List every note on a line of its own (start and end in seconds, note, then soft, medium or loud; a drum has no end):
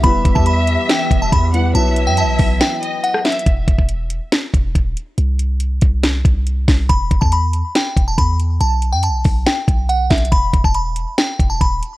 0.00 0.24 E1 loud
0.00 3.43 E3 medium
0.00 1.71 G3 medium
0.00 1.49 G3 medium
0.00 1.50 B3 medium
0.00 3.43 B3 medium
0.00 1.71 G4 medium
0.00 1.50 E5 loud
0.00 0.34 B5 loud
0.00 kick loud
0.00 closed hi-hat medium
0.05 1.51 E4 medium
0.05 1.52 B4 medium
0.25 0.35 E1 loud
0.25 kick loud
0.25 closed hi-hat medium
0.35 0.77 E2 loud
0.35 0.46 A5 medium
0.35 kick medium
0.46 0.87 B5 medium
0.46 closed hi-hat medium
0.67 closed hi-hat medium
0.89 1.20 G5 medium
0.89 snare loud
0.89 closed hi-hat medium
1.11 1.31 E1 loud
1.11 kick loud
1.11 closed hi-hat medium
1.22 1.32 A5 medium
1.32 1.73 E2 loud
1.32 1.53 B5 medium
1.32 kick loud
1.32 closed hi-hat medium
1.52 1.74 G3 medium
1.52 1.73 B3 soft
1.52 1.74 E4 medium
1.52 1.76 B4 medium
1.52 1.74 F#5 medium
1.52 closed hi-hat medium
1.73 2.09 B1 loud
1.73 3.42 F#3 medium
1.73 3.45 F#3 medium
1.73 3.43 B3 medium
1.73 3.45 E4 loud
1.73 3.44 E4 medium
1.73 2.78 E5 loud
1.73 2.05 A5 loud
1.73 closed hi-hat medium
1.78 3.44 B4 medium
1.97 closed hi-hat medium
2.07 2.25 F#2 loud
2.07 2.17 G5 medium
2.17 2.58 A5 medium
2.17 closed hi-hat medium
2.23 2.39 B1 loud
2.39 2.61 B1 loud
2.39 kick loud
2.39 open hi-hat medium
2.61 3.01 G5 medium
2.61 snare loud
2.61 closed hi-hat medium
2.82 3.22 D#5 medium
2.82 closed hi-hat medium
3.04 3.24 F#5 medium
3.04 closed hi-hat medium
3.14 cross-stick medium
3.25 3.45 E5 medium
3.25 snare loud
3.25 closed hi-hat soft
3.32 closed hi-hat medium
3.39 closed hi-hat medium
3.46 3.67 E1 loud
3.46 kick loud
3.46 closed hi-hat medium
3.68 3.78 E1 loud
3.68 kick loud
3.68 closed hi-hat medium
3.79 4.20 E1 loud
3.79 kick medium
3.89 closed hi-hat medium
4.10 closed hi-hat medium
4.32 snare loud
4.32 closed hi-hat medium
4.54 4.74 E1 loud
4.54 kick loud
4.54 closed hi-hat medium
4.75 4.96 D#1 loud
4.75 kick loud
4.75 closed hi-hat medium
4.97 closed hi-hat medium
5.18 5.80 C2 loud
5.18 closed hi-hat medium
5.39 closed hi-hat medium
5.60 closed hi-hat medium
5.82 6.23 C2 loud
5.82 kick medium
5.82 closed hi-hat medium
6.04 snare loud
6.04 closed hi-hat medium
6.25 6.66 C2 loud
6.25 kick loud
6.25 closed hi-hat medium
6.47 closed hi-hat medium
6.68 6.88 C2 loud
6.68 kick loud
6.68 snare medium
6.68 open hi-hat medium
6.89 7.10 E1 loud
6.89 7.19 B5 loud
6.89 kick loud
6.89 closed hi-hat medium
7.11 7.21 E1 loud
7.11 kick loud
7.11 closed hi-hat medium
7.21 7.63 E2 loud
7.21 7.31 A5 medium
7.21 kick medium
7.32 7.73 B5 medium
7.32 closed hi-hat medium
7.53 closed hi-hat medium
7.75 8.06 G5 medium
7.75 snare loud
7.75 closed hi-hat medium
7.96 8.17 E1 loud
7.96 kick loud
7.96 closed hi-hat medium
8.08 8.18 A5 medium
8.18 8.59 E2 loud
8.18 8.38 B5 medium
8.18 kick medium
8.18 closed hi-hat medium
8.40 closed hi-hat medium
8.61 8.94 B1 loud
8.61 8.91 A5 medium
8.61 closed hi-hat medium
8.82 closed hi-hat medium
8.93 9.10 F#2 loud
8.93 9.03 G5 medium
9.03 9.44 A5 medium
9.03 closed hi-hat medium
9.09 9.24 B1 loud
9.24 9.46 B1 loud
9.24 kick loud
9.24 open hi-hat medium
9.46 9.87 G5 medium
9.46 snare loud
9.46 closed hi-hat medium
9.68 10.09 B1 loud
9.68 kick loud
9.68 closed hi-hat medium
9.89 10.09 F#5 medium
9.89 closed hi-hat medium
10.10 10.31 B1 loud
10.10 10.31 E5 medium
10.10 kick loud
10.10 snare medium
10.10 closed hi-hat soft
10.18 closed hi-hat medium
10.25 closed hi-hat medium
10.32 10.53 E1 loud
10.32 10.62 B5 loud
10.32 kick loud
10.32 closed hi-hat medium
10.54 10.64 E1 loud
10.54 kick loud
10.54 closed hi-hat medium
10.64 11.05 E1 loud
10.64 10.75 A5 medium
10.64 kick medium
10.74 11.15 B5 medium
10.74 closed hi-hat medium
10.96 closed hi-hat medium
11.18 11.48 G5 medium
11.18 snare loud
11.18 closed hi-hat medium
11.39 11.60 E1 loud
11.39 kick loud
11.39 closed hi-hat medium
11.50 11.60 A5 medium
11.61 11.81 D#1 loud
11.61 11.81 B5 medium
11.61 kick medium
11.61 closed hi-hat medium
11.82 closed hi-hat medium